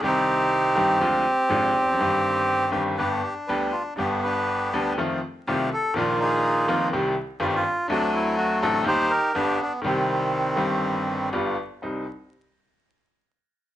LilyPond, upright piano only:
\new Staff \with { instrumentName = "Upright piano" } { \clef bass \time 4/4 \key c \minor \tempo 4 = 122 <c, c ees g c' g'>4. <g,, g, ees g c' g'>8 <d, d f aes f'>8 r8 <aes,, aes, d f aes f'>8 r32 e,32 f,32 fis,32 | <g,, g, ees g c' g'>4. <g,, g, ees g c' g'>8 <g,, g, d g b g'>8 r8 <d, d g b g'>8 r8 | <g,, g, d g b g'>4. <d, d g b g'>8 <f, ees f a c' f'>8 r8 <c, c ees a c' f'>8 r8 | <bes,, bes, ees f bes f'>4. <f,, f, ees f bes f'>8 <c, c ees g c' g'>8 r8 <g,, g, ees g c' g'>8 r8 |
<d, d a c' fis'>4. <a,, a, d a c' fis'>8 <ees, ees g bes g'>8 r8 <g,, g, d g b g'>8 r8 | <c, c ees g c' g'>4. <g,, g, ees g c' g'>4. <g,, g, d g b f'>8 r8 | <c, g c' ees'>8 r2. r8 | }